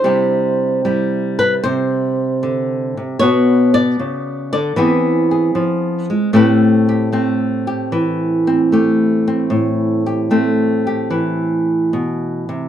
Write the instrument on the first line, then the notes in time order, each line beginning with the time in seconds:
nylon-string guitar
Already playing: C5
0.04 C3 G3 E4 G4
0.85 G3 E4
1.39 B4
1.64 C3 C5
2.43 D3
2.97 C3
3.19 B2 B3 F#4 C#5
3.74 D5
3.99 C#3
4.53 D3 D5
4.76 E3 B3 C4 G#4
5.31 G#4
5.55 F3
6.10 G#3
6.33 A2 A3 C4 G4 B4
6.89 G4
7.12 A3 C4
7.67 G4
7.92 E3
8.47 C4
8.72 A3 G4
9.28 C4
9.50 A2
10.06 G4
10.31 A3 C4
10.87 G4
11.10 E3
11.93 B2
12.49 C3